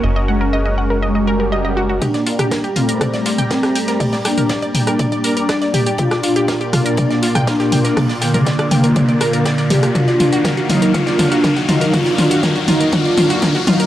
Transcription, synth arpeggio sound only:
\new Staff \with { instrumentName = "Synth arpeggio sound" } { \time 4/4 \key g \minor \tempo 4 = 121 ees''16 ees''16 fis''16 ais'16 ees''16 ees''16 fis''16 ais'16 ees''16 ees''16 ais'16 ais'16 ees''16 ees''16 fis'16 fis'16 | g'16 d''16 f'16 g'16 bes'16 g'16 f'16 bes'16 d''16 d''16 f'16 g''16 bes'16 g'16 g''16 bes'16 | d''16 d''16 g''16 bes'16 d''16 d''16 g''16 bes'16 d''16 d''16 bes'16 bes'16 d''16 d''16 g'16 g'16 | g'16 d''16 f'16 g'16 bes'16 g'16 f'16 bes'16 d''16 d''16 f'16 g''16 bes'16 g'16 g''16 bes'16 |
d''16 d''16 g''16 bes'16 d''16 d''16 g''16 bes'16 d''16 d''16 bes'16 bes'16 d''16 d''16 g'16 g'16 | ges'16 d''16 f'16 ges'16 bes'16 ges'16 f'16 bes'16 ges'16 d''16 f'16 ges'16 bes'16 ges'16 f'16 bes'16 | ges'16 d''16 f'16 ges'16 bes'16 ges'16 f'16 bes'16 ges'16 d''16 f'16 ges'16 bes'16 ges'16 f'16 bes'16 | }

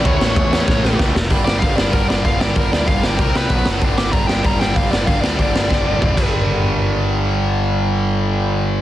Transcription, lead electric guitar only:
\new Staff \with { instrumentName = "Lead electric guitar" } { \time 4/4 \key g \lydian \tempo 4 = 190 cis''2. r4 | r8 d''8 f''8 d''8 bes'8 d''8 f''8 d''8 | bes'8 d''8 f''8 d''8 bes'8 b'4 r8 | r8 d'''8 bes''8 g''8 bes''8 g''8 f''8 d''8 |
f''8 d''8 d''2. | r1 | r1 | }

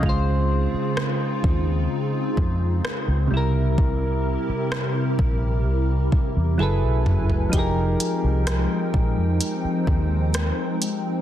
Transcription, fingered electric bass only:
\new Staff \with { instrumentName = "Fingered electric bass" } { \clef bass \time 4/4 \key f \minor \tempo 4 = 64 des,8. r8. ees,8 r8 f,8 r16 des,16 c,8~ | c,8. r8. bes,,8 c,8 r16 e,16 ges,,16 ces,16 ges,,8 | f,,8 r16 c,8 r16 bes,,16 f,16 r8 ees,8. r8. | }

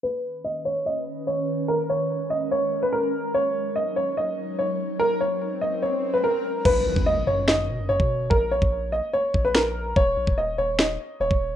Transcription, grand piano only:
\new Staff \with { instrumentName = "Grand piano" } { \time 4/4 \key ces \lydian \tempo 4 = 145 b'4 dis''8 cis''8 dis''4 cis''4 | bes'8 des''4 ees''8 des''8. ces''16 bes'4 | des''4 ees''8 des''8 ees''4 des''4 | bes'8 des''4 ees''8 des''8. ces''16 bes'4 |
b'4 dis''8 cis''8 dis''4 cis''4 | bes'8 des''4 ees''8 des''8. ces''16 bes'4 | des''4 ees''8 des''8 ees''4 des''4 | }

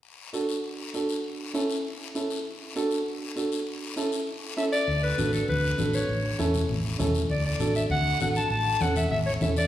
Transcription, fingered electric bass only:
\new Staff \with { instrumentName = "Fingered electric bass" } { \clef bass \time 4/4 \key d \major \tempo 4 = 198 r1 | r1 | r1 | r1 |
d,4 a,,4 d,4 a,,4 | a,,4 e,4 a,,4 e,4 | d,4 a,,4 d,4 a,,4 | a,,4 e,4 a,,4 e,4 | }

